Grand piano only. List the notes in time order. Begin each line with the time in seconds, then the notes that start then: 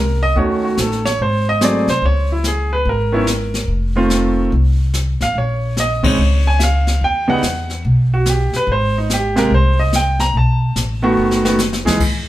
Already playing: A#4
0.23 D#5
0.36 D#3 A3 C#4 F#4 C#5
0.65 F#4
0.81 A4
1.05 C#5
1.22 C5
1.49 D#5
1.61 F#3 A3 C4 G#4 D5
1.90 C5
2.06 C#5
2.32 E4
2.47 G#4
2.73 B4
2.89 A#4
3.12 D#3 B3 C#4 E4
3.96 D#3 A3 C4 F4
5.22 F5
5.38 C#5
5.80 D#5
6.03 C#3 G#3 C4 D#4 C#5
6.47 G#5
6.59 E5
6.63 F5
7.04 G5
7.28 C#3 G3 B3 D#4 F#5
8.14 F#4
8.29 G4
8.56 B4
8.72 C5
8.98 D#4
9.13 G4
9.36 C3 G#3 A#3 G4 A#4
9.54 C5
9.79 D#5
9.96 G5
10.20 A#5
10.37 A5
11.02 D#3 A3 B3 F#4
11.44 D#3 A3 B3 F#4
11.85 E3 G#3 D#4 G#4